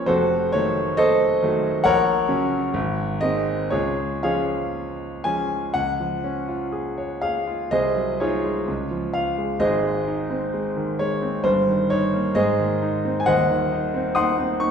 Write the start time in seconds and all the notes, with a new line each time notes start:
Already playing: A#1 A#2 F3 A#3 C#4 C#5 D#5
0.06 F1 F2 F#4 A4 C5
0.52 D#3 F#3 A3 C#5
0.97 A4 C5 D#5
1.42 D#3 F#3 A3
1.84 A#1 A#4 C#5 F#5
2.28 C#3 F#3 C#4
2.74 G#1
3.21 D#3 G#3 C4 D#5
3.70 C#2 F4 G#4 C#5
4.23 F3 G#3 C#4 G#4 C#5 F5
5.24 F3 G#3 C#4 G#5
5.74 C#2 F#5
6.00 F3
6.24 C#4
6.48 F4
6.72 G#4
6.98 C#5
7.22 G#4 F5
7.47 F4
7.71 C2 G#4 C5 D#5
7.96 F#3
8.20 D#4 F4 G#4 C#5
8.44 G#3
8.68 C#2
8.91 F3
9.14 F4 F5
9.38 G#3
9.59 G#1 G#2 G#4 C5 D#5
9.83 G#3
10.07 D#4
10.30 C4
10.54 G#3
10.77 D#3
10.99 G#3 C#5
11.22 C4
11.44 G1 G2 C5
11.67 D#3
11.90 D#4 C#5
12.14 A#3
12.35 G#2 G#4 C5 D#5
12.59 D#3
12.82 D#4
13.05 C4
13.20 G#5
13.26 D#1 D#2 C5 D#5 F#5
13.50 D#3
13.72 D#4
13.94 C4
14.15 D#4 F#5 C6 D#6
14.38 C4
14.60 D#4 C#6